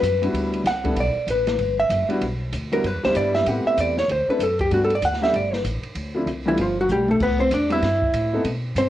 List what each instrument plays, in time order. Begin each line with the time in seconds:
Already playing: hollow-body jazz guitar B4
0.02 upright bass F#2, hi-hat pedal, ride
0.22 grand piano G3 B3 D4 E4 F#4, ride
0.33 upright bass D2, ride
0.53 ride
0.64 upright bass C2, hollow-body jazz guitar F#5, snare, hi-hat pedal, ride
0.84 grand piano G3 B3 D4 E4 A4, kick, ride
0.96 upright bass B1, ride
1.00 hollow-body jazz guitar D5
1.27 upright bass A1, hollow-body jazz guitar B4, hi-hat pedal, ride
1.47 snare, ride
1.58 upright bass G1, ride
1.80 hollow-body jazz guitar E5
1.89 upright bass F#1, hi-hat pedal, ride
2.09 grand piano G3 B3 D4 E4 F#4, muted upright bass stroke, ride
2.21 upright bass B1, ride
2.52 upright bass D2, hi-hat pedal, ride
2.72 grand piano G3 B3 D4 E4 F#4, hollow-body jazz guitar A#4, ride
2.84 upright bass F#2, hollow-body jazz guitar B4, ride
2.94 upright bass E2
3.03 upright bass D2, grand piano G3 B3 D4 E4 G4, hollow-body jazz guitar C5, snare
3.15 upright bass G2, hollow-body jazz guitar D5, hi-hat pedal, ride
3.35 hollow-body jazz guitar E5, snare
3.46 upright bass A2, grand piano A3 B3 C4 E4 G4, hollow-body jazz guitar F#5, ride
3.65 hollow-body jazz guitar E5, muted upright bass stroke
3.77 upright bass E2, hollow-body jazz guitar D5, hi-hat pedal, ride
3.98 hollow-body jazz guitar C#5, snare
4.08 upright bass D2, hollow-body jazz guitar C5, ride
4.28 grand piano A3 C4 D4 E4 A4, hollow-body jazz guitar B4, muted upright bass stroke
4.39 upright bass F#2, hi-hat pedal, ride
4.43 hollow-body jazz guitar A4
4.59 hollow-body jazz guitar G4, kick, ride
4.71 upright bass G2, grand piano G3 A3 B3 D4 F#4, hollow-body jazz guitar F#4, ride
4.85 hollow-body jazz guitar A4
4.90 ride
4.95 hollow-body jazz guitar D5
5.02 upright bass D2, hollow-body jazz guitar F#5, hi-hat pedal, ride
5.13 snare
5.21 grand piano G3 A3 B3 D4 G4, hollow-body jazz guitar E5, snare
5.33 upright bass G1, hollow-body jazz guitar D5, ride
5.53 hollow-body jazz guitar B4, snare
5.64 upright bass A1, hi-hat pedal, ride
5.83 muted upright bass stroke, ride
5.95 upright bass D2, ride
6.15 grand piano F3 A3 C4 D4 E4
6.26 upright bass C2, hi-hat pedal, ride
6.46 hollow-body jazz guitar E3 E4, grand piano G3 A3 B3 D4 F4
6.57 upright bass G1, hollow-body jazz guitar F3 F4, ride
6.81 hollow-body jazz guitar F#3 F#4
6.89 upright bass B1, hollow-body jazz guitar G3 G4, hi-hat pedal, high tom
7.08 hollow-body jazz guitar A3 A4, high tom
7.20 upright bass C2, hollow-body jazz guitar B3 B4, kick, crash
7.40 hollow-body jazz guitar C4 C5
7.51 upright bass E2, hollow-body jazz guitar D4 D5, hi-hat pedal, ride
7.70 grand piano G3 B3 C4 D4 E4, hollow-body jazz guitar E4 E5, ride
7.82 upright bass G2, snare, ride
8.02 kick
8.13 upright bass A2, hi-hat pedal, ride
8.33 grand piano A3 B3 C4 D#4 A4
8.44 upright bass B2, ride
8.75 upright bass G2, hollow-body jazz guitar C4 C5, hi-hat pedal, ride